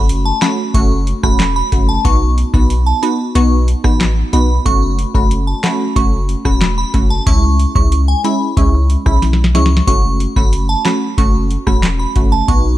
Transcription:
Already playing: F#1 A3 C#4 F#4
0.09 closed hi-hat
0.25 A5
0.42 A3 C#4 F#4 B5, snare, clap, closed hi-hat
0.74 F#1 A3 C#4 F#4 C#6, kick, closed hi-hat
1.07 closed hi-hat
1.23 E1 A3 C#4 F#4 B5, kick, cross-stick
1.40 snare, clap, closed hi-hat
1.56 B5
1.72 F#1 A3 C#4 F#4, kick, closed hi-hat
1.89 A5
2.05 B1 B3 D#4 F#4 C#6, kick, closed hi-hat
2.38 closed hi-hat
2.54 B1 B3 D#4 F#4 B5, kick
2.70 closed hi-hat
2.86 A5
3.02 B3 D#4 F#4 B5, closed hi-hat
3.35 B1 B3 D#4 F#4 C#6, closed hi-hat
3.68 closed hi-hat
3.84 A1 B3 D#4 F#4 B5, kick, cross-stick
4.00 snare, clap, closed hi-hat
4.33 B1 B3 D#4 F#4 B5, closed hi-hat
4.65 F#1 A3 C#4 F#4 C#6, kick, closed hi-hat
4.99 closed hi-hat
5.14 F#1 A3 C#4 F#4 B5, kick
5.31 closed hi-hat
5.47 A5
5.63 A3 C#4 F#4 B5, snare, clap, closed hi-hat
5.96 F#1 A3 C#4 F#4 C#6, kick, closed hi-hat
6.29 closed hi-hat
6.45 E1 A3 C#4 F#4 B5, kick, cross-stick
6.61 snare, clap, closed hi-hat
6.78 B5
6.94 F#1 A3 C#4 F#4, kick, closed hi-hat
7.10 A5
7.26 C#2 G#3 C#4 E4 C#6, kick, closed hi-hat
7.59 closed hi-hat
7.75 C#2 G#3 C#4 E4 C#6, kick
7.92 closed hi-hat
8.08 G#5
8.24 G#3 C#4 E4 B5, closed hi-hat
8.57 C#2 G#3 C#4 E4 C#6, kick, closed hi-hat
8.90 closed hi-hat
9.06 B1 G#3 C#4 E4 B5, kick, cross-stick
9.22 snare, closed hi-hat
9.33 snare
9.44 snare
9.55 C#2 G#3 C#4 E4 C#6, snare, closed hi-hat
9.66 snare
9.77 snare
9.87 F#1 A3 C#4 F#4 C#6, kick, closed hi-hat
10.20 closed hi-hat
10.36 F#1 A3 C#4 F#4 B5, kick
10.53 closed hi-hat
10.69 A5
10.85 A3 C#4 F#4 B5, snare, clap, closed hi-hat
11.18 F#1 A3 C#4 F#4 C#6, kick, closed hi-hat
11.51 closed hi-hat
11.67 E1 A3 C#4 F#4 B5, kick, cross-stick
11.83 snare, clap, closed hi-hat
11.99 B5
12.16 F#1 A3 C#4 F#4, kick, closed hi-hat
12.32 A5
12.48 B1 B3 D#4 F#4 C#6, kick, closed hi-hat

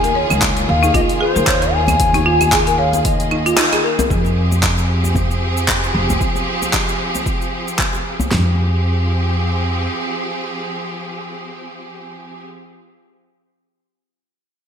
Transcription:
Already playing: D#2 D#3 A#3 F4 G#4 G#5
0.04 A#4, open hi-hat, djembe tone, shaker
0.15 C#5
0.30 C#2, djembe tone, claves, shaker
0.42 kick, clap, open hi-hat, shaker
0.57 open hi-hat, djembe slap, shaker
0.68 D#2 F5
0.83 D#4, djembe tone, shaker
0.94 F4 D#5, kick, open hi-hat, djembe bass, shaker
1.09 open hi-hat, shaker
1.21 G#4 C5
1.36 D#2 A#4, shaker
1.47 C#5, kick, clap, open hi-hat, shaker
1.62 open hi-hat, shaker
1.74 G#5
1.87 open hi-hat, djembe slap, djembe bass, claves, shaker
2.00 kick, open hi-hat, shaker
2.13 D#4, open hi-hat, djembe tone, djembe bass, shaker
2.26 F4
2.41 open hi-hat, djembe tone, claves, shaker
2.52 G#4, kick, clap, open hi-hat, shaker
2.67 A#4, open hi-hat, djembe slap, shaker
2.78 C#5 F5
2.93 open hi-hat, djembe tone, shaker
2.99 F5
3.05 D#5, kick, open hi-hat, shaker
3.20 open hi-hat, shaker
3.31 D#4, djembe slap, claves
3.46 F4, open hi-hat, shaker
3.57 D#4, clap, open hi-hat, djembe slap, shaker
3.72 G#4, open hi-hat, djembe slap, claves, shaker
3.84 A#4
3.99 A#4, open hi-hat, djembe slap, djembe bass, shaker
4.10 F2 F3 C4 G4 G#4, kick, shaker
4.25 djembe tone, shaker
4.51 djembe tone, shaker
4.63 kick, clap, shaker
4.78 djembe slap, shaker
5.04 djembe tone, shaker
5.15 kick, djembe bass, shaker
5.31 shaker
5.57 shaker
5.68 kick, clap, shaker
5.84 shaker
5.95 F1
6.09 djembe slap, djembe bass, shaker
6.21 kick, shaker
6.35 djembe tone, shaker
6.62 djembe tone, shaker
6.73 kick, clap, shaker
6.89 djembe slap, shaker
7.15 djembe tone, shaker
7.26 kick, shaker
7.42 shaker
7.68 shaker
7.78 kick, clap, djembe slap, shaker
7.93 djembe slap, shaker
8.20 djembe bass, shaker
8.31 F2 F3 C4 G4 G#4, snare, floor tom

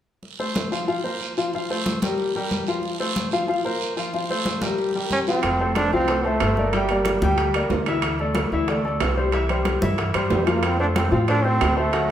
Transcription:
0.23 high conga, long guiro
0.39 A3 A4 C5, high conga
0.55 high conga, short guiro
0.72 F3 F4 F5, high conga, short guiro
0.88 F3 F4 F5, high conga, long guiro
1.04 A#3 A#4 C5, high conga
1.21 high conga, short guiro
1.37 F3 F4 F5, short guiro
1.53 F3 F4 F5, high conga, long guiro
1.70 A3 A4 C5, high conga
1.86 high conga, short guiro
2.02 G3 G4 A#4, high conga, short guiro
2.18 high conga, long guiro
2.35 G3 G4 A#4, high conga
2.51 high conga, short guiro
2.67 F3 F4 F5, high conga, short guiro
2.83 high conga, long guiro
3.00 A3 A4 C5, high conga
3.15 high conga, short guiro
3.31 F3 F4 F5, high conga, short guiro
3.48 F3 F4 F5, high conga, long guiro
3.65 A#3 A#4 C5, high conga
3.81 high conga, short guiro
3.97 F3 F4 F5, short guiro
4.13 F3 F4 F5, high conga, long guiro
4.29 A3 A4 C5, high conga
4.46 high conga, short guiro
4.62 G3 G4 A#4, high conga, short guiro
4.78 high conga, long guiro
4.94 G3 G4 A#4, high conga
5.11 C#4, high conga, short guiro
5.27 F3 C4 F4 F5, high conga, short guiro
5.43 F1, high bongo, high conga, high timbale
5.59 A3 A4 C5, high conga
5.75 D4, high bongo, high conga, high timbale, low timbale
5.92 C2 F3 C4 F4 F5, high bongo, high conga
6.08 A3 A4 C5, high bongo, high conga, high timbale
6.25 A3 A4 C5, high bongo, high conga
6.40 G1, high bongo, low bongo, high conga, high timbale, low timbale
6.57 A#3 A#4 D5, high bongo, high conga
6.73 G3 G4 G5, high bongo, high conga, high timbale
6.89 G3 A#3 A#4 D5, high conga, high timbale
7.05 high bongo, high conga, high timbale, low timbale
7.21 D2 G3 G4 G5, high conga
7.38 high bongo, high conga, high timbale
7.54 A#3 A#4 D5, high bongo, high conga, high timbale
7.70 D2, high bongo, low bongo, high conga, low timbale
7.86 E3 E4 E5, high bongo, high conga, high timbale
8.02 high bongo, high conga, high timbale
8.19 A3 A4 D5, high conga
8.35 high bongo, high conga, high timbale, low timbale
8.52 D2 E3 E4 E5, high bongo, high conga
8.68 A3 A4 D5, high bongo, high conga, high timbale
8.84 A3 A4 D5, high bongo, high conga
9.00 C2, high bongo, low bongo, high conga, high timbale, low timbale
9.17 G3 G4 C5, high bongo
9.32 E3 E4 E5, high bongo, high conga, high timbale
9.49 G3 G4 C5, high conga, high timbale
9.65 high bongo, high conga, high timbale, low timbale
9.82 G2 E3 E4 E5, high bongo, high conga
9.98 high bongo, high conga, high timbale
10.14 G2 G3 G4 C5, high bongo, high conga, high timbale
10.30 F2 G3, high bongo, low bongo, high conga, low timbale
10.47 F3 A#3 F4 F5, high bongo, high conga, high timbale
10.63 C4, high bongo, high conga, high timbale
10.79 A3 D4 A4 C5, high conga
10.96 C4, high bongo, high conga, high timbale, low timbale
11.12 A2 F3 C4 F4 F5, high bongo, high conga
11.28 A3 D4 A4 C5, high bongo, high conga, high timbale
11.44 A3 C4 A4 C5, high bongo, high conga
11.61 D2, high bongo, low bongo, high conga, high timbale, low timbale
11.77 A3 A4 C5, high bongo
11.93 F#3 F#4 F#5, high bongo, high conga, high timbale

